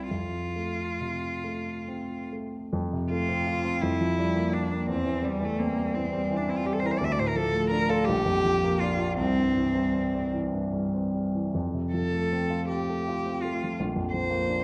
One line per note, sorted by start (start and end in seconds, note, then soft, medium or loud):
0.00 0.14 C2 soft
0.00 0.14 G3 soft
0.00 0.14 C4 soft
0.00 0.14 E4 soft
0.10 2.70 F2 soft
0.10 2.28 F4 medium
0.56 1.27 A3 soft
1.01 1.70 C3 soft
1.44 2.15 A3 soft
1.88 2.58 C4 soft
2.33 2.74 A3 soft
2.73 3.79 F2 medium
2.93 3.22 C3 soft
3.11 3.40 A3 soft
3.11 3.83 F4 medium
3.28 3.58 C4 soft
3.47 3.76 F4 soft
3.65 3.83 C4 soft
3.81 4.86 F2 soft
3.81 4.55 E4 medium
4.01 4.29 F3 soft
4.19 4.47 G3 soft
4.35 4.64 A#3 soft
4.52 4.81 D4 soft
4.52 4.89 D4 medium
4.70 4.88 A#3 soft
4.88 6.96 E2 medium
4.88 5.26 C4 medium
5.05 5.34 E3 soft
5.22 5.51 G3 soft
5.22 5.46 G3 medium
5.40 5.69 E3 soft
5.44 5.60 A3 medium
5.58 5.96 A#3 medium
5.58 5.87 C4 soft
5.77 6.05 G3 soft
5.95 6.23 E3 soft
5.95 6.38 C4 medium
6.13 6.41 G3 soft
6.31 6.59 E3 soft
6.37 6.51 D4 medium
6.48 6.76 C4 soft
6.48 6.59 E4 medium
6.58 6.67 F4 medium
6.65 6.94 G3 soft
6.65 6.74 G4 medium
6.73 6.81 A4 medium
6.79 7.01 E3 soft
6.79 6.87 C5 medium
6.86 6.92 A#4 medium
6.91 7.00 C5 medium
6.98 8.04 D2 medium
6.98 7.06 D5 medium
7.04 7.13 E5 medium
7.11 7.21 D5 medium
7.18 7.46 A2 soft
7.18 7.29 C5 medium
7.27 7.37 A#4 medium
7.35 7.64 F3 soft
7.35 7.70 A4 medium
7.54 7.82 A3 soft
7.70 8.00 D4 soft
7.70 7.91 A#4 medium
7.89 8.07 F4 medium
7.89 8.06 A4 medium
8.05 9.17 A#1 medium
8.05 8.82 G4 medium
8.25 8.55 F2 soft
8.45 8.74 F3 soft
8.64 8.93 A#3 soft
8.81 9.12 D4 soft
8.81 9.17 F4 medium
9.00 9.19 F4 soft
9.18 11.50 C2 medium
9.18 10.31 C4 medium
9.37 9.68 G2 soft
9.57 9.87 E3 soft
9.75 10.06 G3 soft
9.94 10.26 C4 soft
10.14 10.46 G3 soft
10.33 10.65 E3 soft
10.52 10.86 G2 soft
10.73 11.07 G3 soft
10.94 11.27 C4 soft
11.14 11.47 G3 soft
11.35 11.55 E3 soft
11.55 13.74 F2 soft
11.74 12.04 C3 soft
11.92 12.24 F3 soft
11.92 12.65 A4 medium
12.13 12.43 A3 soft
12.32 12.62 C4 soft
12.50 12.81 F4 soft
12.68 13.01 C4 soft
12.68 13.43 G4 medium
12.90 13.19 A3 soft
13.08 13.37 F4 soft
13.26 13.54 C4 soft
13.42 13.72 A3 soft
13.42 13.78 F4 medium
13.63 13.79 F3 soft
13.80 14.64 A#1 soft
13.96 14.23 F2 soft
14.12 14.41 F3 soft
14.12 14.64 C5 medium
14.30 14.58 A#3 soft
14.47 14.64 D4 soft